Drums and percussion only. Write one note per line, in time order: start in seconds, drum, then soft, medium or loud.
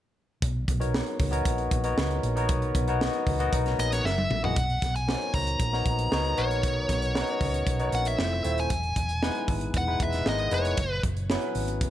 0.42 kick loud
0.42 closed hi-hat medium
0.68 kick medium
0.68 closed hi-hat medium
0.81 closed hi-hat soft
0.94 snare loud
1.06 closed hi-hat soft
1.19 kick medium
1.19 open hi-hat medium
1.33 closed hi-hat medium
1.45 kick loud
1.45 closed hi-hat loud
1.58 closed hi-hat soft
1.71 kick medium
1.71 closed hi-hat medium
1.84 closed hi-hat medium
1.98 snare loud
2.11 closed hi-hat soft
2.23 closed hi-hat medium
2.37 closed hi-hat soft
2.49 kick loud
2.49 closed hi-hat loud
2.62 closed hi-hat soft
2.75 kick medium
2.75 closed hi-hat medium
2.88 closed hi-hat soft
3.01 snare loud
3.13 closed hi-hat soft
3.27 kick medium
3.27 open hi-hat medium
3.40 closed hi-hat medium
3.53 kick loud
3.53 closed hi-hat loud
3.66 snare soft
3.66 closed hi-hat soft
3.79 closed hi-hat medium
3.92 snare soft
3.92 closed hi-hat medium
4.06 snare medium
4.18 high tom medium
4.31 mid tom medium
4.44 floor tom medium
4.56 kick loud
4.56 closed hi-hat medium
4.70 closed hi-hat soft
4.82 kick medium
4.82 snare soft
4.82 closed hi-hat medium
4.95 closed hi-hat soft
5.09 snare loud
5.21 closed hi-hat soft
5.34 kick medium
5.34 open hi-hat medium
5.47 closed hi-hat medium
5.60 kick loud
5.60 closed hi-hat medium
5.73 snare soft
5.86 kick medium
5.86 closed hi-hat medium
5.99 closed hi-hat medium
6.12 snare loud
6.25 closed hi-hat soft
6.38 closed hi-hat medium
6.51 closed hi-hat soft
6.63 kick medium
6.63 closed hi-hat loud
6.89 kick medium
6.89 snare soft
6.89 closed hi-hat medium
7.02 closed hi-hat soft
7.15 snare loud
7.27 closed hi-hat soft
7.41 kick medium
7.41 open hi-hat medium
7.54 closed hi-hat medium
7.67 kick medium
7.67 closed hi-hat medium
7.79 closed hi-hat soft
7.92 closed hi-hat medium
8.05 closed hi-hat medium
8.19 snare loud
8.44 closed hi-hat medium
8.58 closed hi-hat soft
8.70 kick medium
8.70 closed hi-hat loud
8.83 closed hi-hat soft
8.96 kick medium
8.96 closed hi-hat medium
9.09 closed hi-hat soft
9.23 snare loud
9.35 closed hi-hat soft
9.48 kick medium
9.48 open hi-hat medium
9.61 closed hi-hat medium
9.74 kick medium
9.74 closed hi-hat medium
10.00 kick loud
10.00 closed hi-hat medium
10.13 snare soft
10.13 closed hi-hat medium
10.26 snare loud
10.38 closed hi-hat soft
10.51 closed hi-hat medium
10.65 closed hi-hat soft
10.77 kick loud
10.77 closed hi-hat medium
11.03 kick medium
11.03 closed hi-hat medium
11.17 closed hi-hat soft
11.30 snare loud
11.41 closed hi-hat soft
11.55 open hi-hat medium
11.68 closed hi-hat medium
11.81 kick loud
11.81 closed hi-hat medium